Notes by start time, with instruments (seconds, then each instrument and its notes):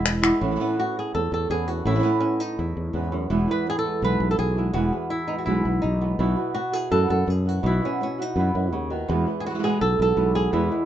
Already playing: fretless electric bass E1, nylon-string guitar G#3 B3 E4
0.06 clap
0.22 nylon-string guitar G#3 B3 E4, clap
0.41 fretless electric bass A1, nylon-string guitar A2 E3 B3 C#4 E4
0.51 nylon-string guitar E3 B3 C#4 E4
0.56 nylon-string guitar E3 B3 C#4 E4
0.60 nylon-string guitar E3 B3 C#4 E4
0.78 nylon-string guitar B3 C#4 E4 F#4
0.99 nylon-string guitar G#4
1.15 fretless electric bass E2, nylon-string guitar A4, muted nylon-string guitar stroke
1.32 fretless electric bass E2, nylon-string guitar A4
1.50 fretless electric bass E2, nylon-string guitar E3 B3 C#4 E4 G#4
1.68 nylon-string guitar B3 C#4 E4 F#4
1.85 fretless electric bass A1, nylon-string guitar A2 E3 B3 C#4 E4
1.90 nylon-string guitar E3 B3 C#4 E4
1.95 nylon-string guitar E3 B3 C#4 E4
1.99 nylon-string guitar E3 B3 C#4 E4
2.04 nylon-string guitar E3 B3 C#4 E4
2.20 nylon-string guitar B3 C#4 E4
2.40 nylon-string guitar D#4
2.59 fretless electric bass E2, nylon-string guitar E4, muted nylon-string guitar stroke
2.77 fretless electric bass E2
2.93 fretless electric bass E2, nylon-string guitar G#2 E3 B3 C#4 E4
3.12 nylon-string guitar F#2 B3 C#4 E4
3.30 fretless electric bass E1, nylon-string guitar E2 B2 E3 G#3 B3 E4
3.48 nylon-string guitar G#3 B3 E4 B4
3.66 nylon-string guitar G#4, muted nylon-string guitar stroke
3.79 nylon-string guitar A4
3.83 nylon-string guitar G#3 B3 E4
4.02 fretless electric bass B1, nylon-string guitar B2 E3 G#3 B3 E4 B4
4.20 fretless electric bass B1, nylon-string guitar G#3 B3 E4
4.31 nylon-string guitar A4
4.37 fretless electric bass B1, nylon-string guitar G#4, muted nylon-string guitar stroke
4.56 nylon-string guitar G#3 B3 E4
4.74 fretless electric bass E1, nylon-string guitar E2 B2 E3 G#3 B3 E4 F#4
4.92 nylon-string guitar G#3 B3 E4
5.10 nylon-string guitar E4, muted nylon-string guitar stroke
5.28 nylon-string guitar G#3 B3 D#4 E4
5.39 nylon-string guitar F#4
5.46 fretless electric bass B1, nylon-string guitar B2 E3 G#3 B3 E4
5.65 fretless electric bass B1, nylon-string guitar G#3 B3 E4
5.82 fretless electric bass B1, nylon-string guitar D#4, muted nylon-string guitar stroke
6.01 nylon-string guitar G#3 B3 E4
6.19 fretless electric bass B1, nylon-string guitar B2 E3 B3 E4 F#4
6.36 nylon-string guitar B3 E4 F#4
6.54 nylon-string guitar F#4, muted nylon-string guitar stroke
6.72 nylon-string guitar B3 E4 F#4 G#4
6.90 fretless electric bass F#2, nylon-string guitar B2 E3 B3 E4 F#4 A4
7.08 fretless electric bass F#2, nylon-string guitar B3 E4 F#4 A4
7.27 fretless electric bass F#2, nylon-string guitar G#4, muted nylon-string guitar stroke
7.46 nylon-string guitar B3 E4 F#4
7.63 fretless electric bass B1, nylon-string guitar B2 E3 B3 E4 F#4
7.82 nylon-string guitar B3 C#4 E4 F#4
8.01 nylon-string guitar C#4, muted nylon-string guitar stroke
8.18 nylon-string guitar B3 D#4 E4 F#4
8.36 fretless electric bass F#2, nylon-string guitar B2 E3 B3 E4 F#4
8.54 fretless electric bass F#2, nylon-string guitar B3 E4 F#4
8.72 fretless electric bass D#2, nylon-string guitar C#3, muted nylon-string guitar stroke
8.90 nylon-string guitar D#3 B3 E4 F#4
9.08 nylon-string guitar E2 B2 E3 G#3 B3 E4, fretless electric bass E2
9.26 nylon-string guitar G#3 B3 E4
9.40 nylon-string guitar G#4
9.45 nylon-string guitar G#3 B3 E4 F#4
9.50 nylon-string guitar E3 G#3 B3 E4
9.54 nylon-string guitar E3 G#3 B3 E4
9.58 nylon-string guitar E3 G#3 B3 E4
9.63 nylon-string guitar B2 E3 G#3 B3 E4 G#4
9.81 fretless electric bass B1, nylon-string guitar A4, muted nylon-string guitar stroke
9.98 fretless electric bass B1, nylon-string guitar G#3 B3 E4 A4
10.16 fretless electric bass B1, nylon-string guitar E3 G#3 B3 E4
10.35 nylon-string guitar G#4
10.51 nylon-string guitar E2 B2 E3 G#3 B3 E4, fretless electric bass E2
10.69 nylon-string guitar G#3 B3 E4